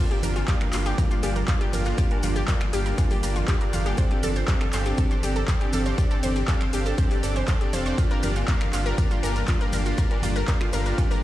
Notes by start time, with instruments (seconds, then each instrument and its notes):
Already playing: ambient pad D4 F4
0.00 ambient pad G3 A4 A#4, supersaw synth A#3 D4 F4 G4 D5
0.11 synth arpeggio sound G4, closed hi-hat
0.23 analog synth bass G1, supersaw synth A#3 D4 F4 G4 D5, synth arpeggio sound A#4, open hi-hat, ride, high conga, cabasa
0.36 synth arpeggio sound F4, closed hi-hat, cabasa, high woodblock
0.48 supersaw synth A#3 D4 F4 G4 F5, synth arpeggio sound G4, kick, clap, closed hi-hat, cowbell, cabasa
0.61 synth arpeggio sound A#4, finger snap, closed hi-hat, high conga
0.73 analog synth bass G1, supersaw synth A#3 D4 F4 G4 F5, synth arpeggio sound F4, clap, open hi-hat, ride, cabasa
0.86 supersaw synth A#3 D4 F4 G4 D5, synth arpeggio sound G4, closed hi-hat, cabasa, high woodblock
0.98 supersaw synth A#3 D4 F4 G4 D5, synth arpeggio sound A#4, kick, closed hi-hat, high conga, cabasa
1.11 synth arpeggio sound F4, closed hi-hat, cabasa
1.23 analog synth bass G1, supersaw synth A#3 D4 F4 G4 D5, synth arpeggio sound G4, open hi-hat, ride, cabasa, high woodblock
1.35 synth arpeggio sound A#4, closed hi-hat, high conga, cabasa
1.48 supersaw synth A#3 D4 F4 G4 D5, synth arpeggio sound F4, kick, clap, closed hi-hat, cabasa
1.61 synth arpeggio sound G4, closed hi-hat
1.73 analog synth bass G1, supersaw synth A#3 D4 F4 G4 F5, synth arpeggio sound A#4, open hi-hat, ride, high conga, cabasa, high woodblock
1.85 supersaw synth A#3 D4 F4 G4 D5, synth arpeggio sound F4, closed hi-hat, cabasa
1.98 supersaw synth A#3 D4 F4 G4 D5, synth arpeggio sound G4, kick, closed hi-hat, cabasa
2.11 synth arpeggio sound A#4, closed hi-hat, high woodblock
2.23 analog synth bass G1, supersaw synth A#3 D4 F4 G4 D5, synth arpeggio sound F4, open hi-hat, ride, high conga, cabasa
2.36 synth arpeggio sound G4, closed hi-hat, cabasa
2.48 supersaw synth A#3 D4 F4 G4 F5, synth arpeggio sound A#4, kick, clap, closed hi-hat, cowbell, cabasa
2.60 synth arpeggio sound F4, finger snap, closed hi-hat, high conga, high woodblock
2.73 analog synth bass G1, supersaw synth A#3 D4 F4 G4 F5, synth arpeggio sound G4, open hi-hat, ride, cabasa
2.86 supersaw synth A#3 D4 F4 G4 D5, synth arpeggio sound A#4, closed hi-hat, cabasa
2.98 supersaw synth A#3 D4 F4 G4 D5, synth arpeggio sound F4, kick, closed hi-hat, high conga, cabasa, high woodblock
3.10 synth arpeggio sound G4, open hi-hat, cabasa
3.23 analog synth bass G1, supersaw synth A#3 D4 F4 G4 D5, synth arpeggio sound A#4, open hi-hat, ride, cabasa
3.36 synth arpeggio sound F4, closed hi-hat, cowbell, high conga, cabasa
3.48 supersaw synth A#3 D4 F4 G4 D5, synth arpeggio sound G4, kick, clap, closed hi-hat, cabasa, high woodblock
3.61 synth arpeggio sound A#4, closed hi-hat
3.73 analog synth bass G1, supersaw synth A#3 D4 F4 G4 F5, synth arpeggio sound F4, open hi-hat, ride, high conga, cabasa
3.86 supersaw synth A#3 D4 F4 G4 D5, synth arpeggio sound G4, closed hi-hat, cabasa, high woodblock
3.97 ambient pad C4 D4 G4, supersaw synth C4 D4 G4 A4 D5, synth arpeggio sound C5, kick, closed hi-hat, cabasa
4.11 synth arpeggio sound G4, closed hi-hat
4.23 analog synth bass G1, supersaw synth C4 D4 G4 A4 D5, synth arpeggio sound A4, open hi-hat, ride, high conga, cabasa
4.35 synth arpeggio sound C5, closed hi-hat, cabasa, high woodblock
4.48 supersaw synth C4 D4 G4 A4 F5, synth arpeggio sound G4, kick, clap, closed hi-hat, cowbell, cabasa
4.61 synth arpeggio sound A4, finger snap, closed hi-hat, high conga
4.73 analog synth bass G1, supersaw synth C4 D4 G4 A4 F5, synth arpeggio sound C5, clap, open hi-hat, ride, cabasa, high woodblock
4.86 supersaw synth C4 D4 G4 A4 D5, synth arpeggio sound G4, closed hi-hat, cabasa
4.98 supersaw synth C4 D4 G4 A4 D5, synth arpeggio sound A4, kick, closed hi-hat, high conga, cabasa
5.11 synth arpeggio sound C5, closed hi-hat, cabasa
5.23 analog synth bass G1, supersaw synth C4 D4 G4 A4 D5, synth arpeggio sound G4, open hi-hat, ride, cabasa, high woodblock
5.36 synth arpeggio sound A4, closed hi-hat, high conga, cabasa
5.48 supersaw synth C4 D4 G4 A4 D5, synth arpeggio sound C5, kick, clap, closed hi-hat, cabasa
5.61 synth arpeggio sound G4, closed hi-hat, high woodblock
5.73 analog synth bass G1, supersaw synth C4 D4 G4 A4 F5, synth arpeggio sound A4, open hi-hat, ride, high conga, cabasa
5.86 supersaw synth C4 D4 G4 A4 D5, synth arpeggio sound C5, closed hi-hat, cabasa
5.98 supersaw synth C4 D4 G4 A4 D5, synth arpeggio sound G4, kick, closed hi-hat, cabasa
6.11 synth arpeggio sound A4, closed hi-hat, cabasa, high woodblock
6.23 analog synth bass G1, supersaw synth C4 D4 G4 A4 D5, synth arpeggio sound C5, open hi-hat, ride, high conga, cabasa
6.36 synth arpeggio sound G4, closed hi-hat, cabasa
6.48 supersaw synth C4 D4 G4 A4 F5, synth arpeggio sound A4, kick, clap, closed hi-hat, cowbell, cabasa, high woodblock
6.61 synth arpeggio sound C5, finger snap, closed hi-hat, high conga
6.73 analog synth bass G1, supersaw synth C4 D4 G4 A4 F5, synth arpeggio sound G4, open hi-hat, ride, cabasa
6.86 supersaw synth C4 D4 G4 A4 D5, synth arpeggio sound A4, closed hi-hat, cabasa
6.98 supersaw synth C4 D4 G4 A4 D5, synth arpeggio sound C5, kick, closed hi-hat, high conga, cabasa, high woodblock
7.11 synth arpeggio sound G4, open hi-hat, cowbell, cabasa
7.23 analog synth bass G1, supersaw synth C4 D4 G4 A4 D5, synth arpeggio sound A4, open hi-hat, ride, cabasa
7.35 synth arpeggio sound C5, closed hi-hat, cowbell, high conga, cabasa, high woodblock
7.48 supersaw synth C4 D4 G4 A4 D5, synth arpeggio sound C5, kick, clap, closed hi-hat, cabasa
7.61 synth arpeggio sound G4, closed hi-hat
7.73 analog synth bass F1, supersaw synth C4 D4 G4 A4 F5, synth arpeggio sound C5, open hi-hat, ride, high conga, cabasa
7.86 supersaw synth C4 D4 G4 A4 D5, synth arpeggio sound C5, closed hi-hat, cabasa, high woodblock
7.98 ambient pad G3 F4 A4 A#4, supersaw synth A#3 D4 F4 G4 D5, synth arpeggio sound F4, kick, closed hi-hat, cabasa, high woodblock
8.11 synth arpeggio sound A#4, closed hi-hat
8.23 analog synth bass G1, supersaw synth A#3 D4 F4 G4 D5, synth arpeggio sound A#4, open hi-hat, ride, high conga, cabasa
8.36 synth arpeggio sound F4, closed hi-hat, cabasa, high woodblock
8.48 supersaw synth A#3 D4 F4 G4 F5, synth arpeggio sound A#4, kick, clap, closed hi-hat, cowbell, cabasa
8.61 synth arpeggio sound A#4, finger snap, closed hi-hat, high conga
8.73 analog synth bass G1, supersaw synth A#3 D4 F4 G4 F5, synth arpeggio sound F4, clap, open hi-hat, ride, cabasa
8.86 supersaw synth A#3 D4 F4 G4 D5, synth arpeggio sound A#4, closed hi-hat, cabasa, high woodblock
8.98 supersaw synth A#3 D4 F4 G4 D5, synth arpeggio sound A#4, kick, closed hi-hat, high conga, cabasa
9.11 synth arpeggio sound F4, closed hi-hat, cabasa
9.23 analog synth bass G1, supersaw synth A#3 D4 F4 G4 D5, synth arpeggio sound A#4, open hi-hat, ride, cabasa, high woodblock
9.36 synth arpeggio sound A#4, closed hi-hat, high conga, cabasa
9.48 supersaw synth A#3 D4 F4 G4 D5, synth arpeggio sound F4, kick, clap, closed hi-hat, cabasa
9.61 synth arpeggio sound A#4, closed hi-hat
9.73 analog synth bass G1, supersaw synth A#3 D4 F4 G4 F5, synth arpeggio sound A#4, open hi-hat, ride, high conga, cabasa, high woodblock
9.86 supersaw synth A#3 D4 F4 G4 D5, synth arpeggio sound F4, closed hi-hat, cabasa
9.98 supersaw synth A#3 D4 F4 G4 D5, synth arpeggio sound A#4, kick, closed hi-hat, cabasa
10.11 synth arpeggio sound A#4, closed hi-hat, high woodblock
10.22 analog synth bass G1, supersaw synth A#3 D4 F4 G4 D5, synth arpeggio sound F4, open hi-hat, ride, high conga, cabasa
10.36 synth arpeggio sound A#4, closed hi-hat, cabasa
10.48 supersaw synth A#3 D4 F4 G4 F5, synth arpeggio sound A#4, kick, clap, closed hi-hat, cowbell, cabasa
10.60 synth arpeggio sound F4, finger snap, closed hi-hat, high conga, high woodblock
10.73 analog synth bass G1, supersaw synth A#3 D4 F4 G4 F5, synth arpeggio sound A#4, open hi-hat, ride, cabasa
10.86 supersaw synth A#3 D4 F4 G4 D5, synth arpeggio sound A#4, closed hi-hat, cabasa
10.98 supersaw synth A#3 D4 F4 G4 D5, synth arpeggio sound F4, kick, closed hi-hat, high conga, cabasa, high woodblock
11.11 synth arpeggio sound A#4, open hi-hat, cabasa